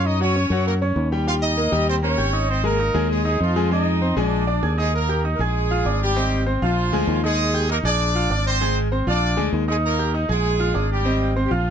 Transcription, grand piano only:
0.00 0.15 C#4 medium
0.00 0.15 C#5 medium
0.00 0.15 C#6 medium
0.20 0.33 F#3 medium
0.20 0.33 F#4 medium
0.20 0.33 F#5 medium
0.36 0.48 C#4 medium
0.36 0.48 C#5 medium
0.36 0.48 C#6 medium
0.52 0.76 F#3 medium
0.52 0.76 F#4 medium
0.52 0.76 F#5 medium
0.82 1.06 C#4 medium
0.82 1.07 C#5 medium
0.82 1.07 C#6 medium
1.12 1.24 G3 medium
1.12 1.25 G4 medium
1.12 1.25 G5 medium
1.27 1.52 G3 medium
1.27 1.52 G4 medium
1.27 1.52 G5 medium
1.57 1.70 A#3 medium
1.57 1.70 A#4 medium
1.57 1.70 A#5 medium
1.72 1.97 G3 loud
1.72 1.97 G4 loud
1.72 1.97 G5 loud
2.02 2.15 A#3 medium
2.02 2.15 A#4 medium
2.02 2.16 A#5 medium
2.17 2.30 G4 medium
2.17 2.31 G5 medium
2.17 2.31 G6 medium
2.33 2.58 D#4 medium
2.33 2.58 D#5 medium
2.33 2.59 D#6 medium
2.64 2.76 G#3 medium
2.64 2.77 G#4 medium
2.64 2.77 G#5 medium
2.79 2.92 D#4 medium
2.79 2.92 D#5 medium
2.79 2.92 D#6 medium
2.94 3.20 G#3 medium
2.94 3.20 G#4 medium
2.94 3.20 G#5 medium
3.25 3.50 D#4 medium
3.25 3.50 D#5 medium
3.25 3.50 D#6 medium
3.56 3.69 G#3 loud
3.56 3.69 G#4 medium
3.56 3.69 G#5 medium
3.71 3.96 G#3 medium
3.71 3.96 G#4 medium
3.71 3.97 G#5 medium
4.01 4.14 C4 medium
4.01 4.14 C5 medium
4.01 4.15 C6 medium
4.17 4.42 G#3 loud
4.17 4.42 G#4 medium
4.17 4.42 G#5 loud
4.47 4.60 D4 medium
4.47 4.60 D5 medium
4.47 4.60 D6 medium
4.63 4.75 G#4 medium
4.63 4.75 G#5 medium
4.63 4.76 G#6 medium
4.78 4.90 D#4 medium
4.78 4.91 D#5 medium
4.78 4.91 D#6 medium
5.09 5.21 G4 medium
5.09 5.22 G5 medium
5.09 5.22 G6 medium
5.24 5.37 D#4 medium
5.24 5.37 D#5 medium
5.24 5.37 D#6 medium
5.40 5.65 G#4 medium
5.40 5.65 G#5 medium
5.40 5.65 G#6 medium
5.71 5.83 F4 medium
5.71 5.83 F5 medium
5.71 5.83 F6 medium
5.86 6.11 D4 medium
5.86 6.11 D5 medium
5.86 6.11 D6 medium
6.16 6.41 C4 medium
6.16 6.41 C5 medium
6.16 6.42 D#5 medium
6.46 6.59 C4 medium
6.46 6.59 C5 medium
6.46 6.59 C6 medium
6.62 6.87 F4 medium
6.62 6.87 F5 medium
6.62 6.88 F6 medium
6.93 7.18 G#3 loud
6.93 7.18 G#4 loud
6.93 7.18 G#5 medium
7.23 7.48 D#4 medium
7.23 7.48 D#5 medium
7.23 7.49 D#6 medium
7.54 7.66 G4 medium
7.54 7.66 G5 medium
7.54 7.67 G6 medium
7.69 7.82 D#4 medium
7.69 7.82 D#5 medium
7.69 7.82 D#6 medium
7.85 8.10 G#4 medium
7.85 8.10 G#5 medium
7.85 8.10 G#6 medium
8.15 8.28 F4 medium
8.15 8.28 F5 medium
8.15 8.28 F6 medium
8.30 8.55 D4 medium
8.30 8.56 D5 medium
8.30 8.56 D6 medium
8.61 8.86 G#3 medium
8.61 8.86 G#4 medium
8.61 8.86 G#5 medium
8.91 9.04 C4 medium
8.91 9.04 C5 medium
8.91 9.04 C6 medium
9.07 9.32 F4 medium
9.07 9.32 F5 medium
9.07 9.32 F6 medium
9.37 9.62 G#3 medium
9.37 9.62 G#4 medium
9.37 9.63 G#5 medium
9.68 9.93 D#4 medium
9.68 9.93 D#5 medium
9.68 9.93 D#6 medium
9.99 10.11 G4 medium
9.99 10.12 G5 medium
9.99 10.12 G6 medium
10.14 10.27 D#4 medium
10.14 10.27 D#5 medium
10.14 10.27 D#6 medium
10.29 10.54 G#4 medium
10.29 10.54 G#5 medium
10.29 10.54 G#6 medium
10.60 10.72 F4 medium
10.60 10.72 F5 medium
10.60 10.73 F6 medium
10.74 11.00 D4 medium
10.74 11.00 D5 medium
10.74 11.00 D6 medium
11.05 11.30 C4 medium
11.05 11.31 C5 medium
11.05 11.31 D#5 medium
11.36 11.49 C4 medium
11.36 11.49 C5 medium
11.36 11.49 C6 medium
11.51 11.70 F4 medium
11.51 11.70 F5 medium
11.51 11.70 F6 medium

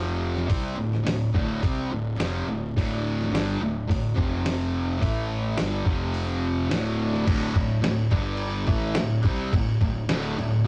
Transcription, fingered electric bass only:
0.00 0.46 F1 loud
0.50 0.76 C2 medium
0.79 1.04 D1 medium
1.06 1.32 D1 medium
1.35 1.61 D1 medium
1.64 1.90 C2 loud
1.91 2.17 D1 medium
2.19 2.46 F1 medium
2.47 2.73 D1 medium
2.77 3.29 D1 medium
3.31 3.58 G1 medium
3.61 3.87 D1 medium
3.91 4.16 D1 medium
4.17 4.98 F1 loud
5.02 5.54 A1 loud
5.60 5.86 G1 medium
5.87 6.67 F1 medium
6.73 7.25 D1 medium
7.28 7.54 D1 loud
7.56 7.82 D1 medium
7.86 8.11 D1 medium
8.12 8.64 G1 loud
8.68 8.94 A1 loud
8.97 9.23 D1 medium
9.25 9.51 C2 loud
9.53 9.79 D1 medium
9.82 10.07 D1 medium
10.10 10.35 D1 medium
10.39 10.64 D1 medium

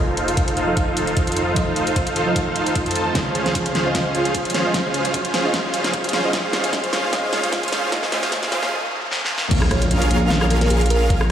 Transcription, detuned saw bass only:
0.00 0.55 F1 medium
0.57 1.15 F1 loud
1.17 1.55 F1 loud
1.56 2.14 F1 medium
2.16 2.84 F1 loud
2.86 3.14 F2 loud
3.15 3.73 C#2 medium
3.75 3.93 C#2 loud
3.95 4.53 C#2 loud
4.54 4.73 C#2 medium
4.74 5.32 C#2 medium
5.34 5.52 C#2 loud
5.54 6.12 C#2 medium
6.13 6.31 D#2 loud
6.33 6.71 D#2 medium
6.73 7.11 D#2 loud
7.13 7.51 D#2 loud
7.53 7.91 D#2 loud
7.92 8.10 D#2 medium
8.12 8.30 D#2 loud
8.32 8.50 D#2 medium
8.52 8.70 D#2 loud
9.51 10.09 A#1 loud
10.11 10.69 A#1 loud
10.70 11.08 A#1 loud
11.10 11.31 A#1 medium

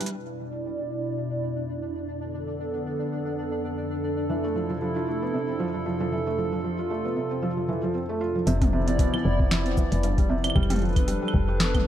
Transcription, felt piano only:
0.01 0.10 G3 medium
4.29 4.43 E3 medium
4.44 4.54 A3 medium
4.55 4.69 F3 medium
4.70 4.76 F3 medium
4.82 4.94 F3 medium
4.96 5.06 F4 medium
5.08 5.22 A3 medium
5.22 5.33 B3 medium
5.34 5.46 C3 medium
5.48 5.58 C4 medium
5.60 5.67 F3 loud
5.74 5.84 F3 medium
5.86 5.98 F3 medium
6.00 6.11 F3 loud
6.12 6.26 E3 medium
6.27 6.36 A3 medium
6.38 6.51 F3 medium
6.53 6.58 F3 medium
6.64 6.76 F3 medium
6.79 6.88 F4 medium
6.90 7.04 A3 medium
7.05 7.16 B3 medium
7.16 7.28 C3 medium
7.31 7.40 C4 medium
7.42 7.50 F3 medium
7.57 7.67 F3 medium
7.69 7.81 E3 loud
7.83 7.93 F3 medium
7.95 8.02 C4 medium
8.09 8.19 A3 medium
8.21 8.35 F4 medium
8.35 8.45 F3 medium
8.47 8.54 C3 loud
8.61 8.71 C3 medium
8.73 8.85 C3 loud
8.88 8.98 C3 loud
8.99 9.13 B2 medium
9.14 9.23 E3 medium
9.25 9.38 C3 medium
9.40 9.45 C3 medium
9.51 9.63 C3 medium
9.66 9.75 C4 medium
9.77 9.90 E3 medium
9.92 10.03 E3 medium
10.03 10.15 G2 medium
10.18 10.27 G3 medium
10.29 10.37 C3 loud
10.44 10.54 C3 medium
10.56 10.68 G3 loud
10.70 10.81 G3 loud
10.82 10.95 F3 medium
10.96 11.06 B3 medium
11.08 11.21 G3 medium
11.22 11.28 G3 medium
11.34 11.46 G3 medium
11.48 11.58 G4 medium
11.60 11.73 B3 medium
11.74 11.85 B3 medium

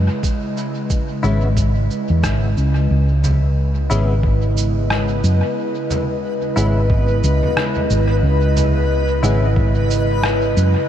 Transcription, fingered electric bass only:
1.24 1.88 G#1 medium
2.10 2.22 E2 medium
2.24 2.54 G#1 medium
2.57 2.87 C#2 medium
2.91 3.88 C#2 medium
3.91 5.21 G#1 medium
5.24 5.41 F#2 medium
6.57 7.21 G#1 medium
7.24 7.41 C#2 medium
7.90 8.20 G#1 medium
8.23 9.21 C#2 loud
9.23 10.54 G#1 loud
10.57 10.74 F#2 medium

